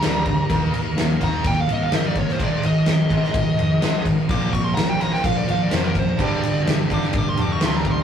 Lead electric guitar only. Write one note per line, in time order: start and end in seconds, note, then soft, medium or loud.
0.00 0.95 A#5 loud
1.24 1.46 A#5 loud
1.47 1.60 G5 medium
1.60 1.70 F5 medium
1.72 1.82 D#5 medium
1.83 1.94 F5 loud
1.95 2.06 D#5 loud
2.07 2.18 D5 medium
2.19 2.29 C#5 medium
2.32 2.42 C5 medium
2.43 2.65 D5 medium
2.66 4.03 D#5 loud
4.30 4.53 D6 loud
4.53 4.64 C#6 medium
4.64 4.74 C6 loud
4.75 4.89 A#5 loud
4.89 5.00 G5 medium
5.00 5.12 A#5 medium
5.13 5.25 G5 medium
5.25 5.36 F5 loud
5.37 5.48 D5 medium
5.50 5.61 F5 medium
5.63 5.73 D5 medium
5.76 5.86 C5 medium
5.84 5.95 A#4 medium
5.99 6.20 C5 medium
6.24 6.68 D5 loud
6.94 7.04 D6 loud
7.18 7.29 D6 loud
7.29 7.41 C6 medium
7.41 7.51 D6 loud
7.52 7.62 C#6 medium
7.66 7.76 C6 loud
7.76 7.86 A#5 medium
7.91 7.99 C6 medium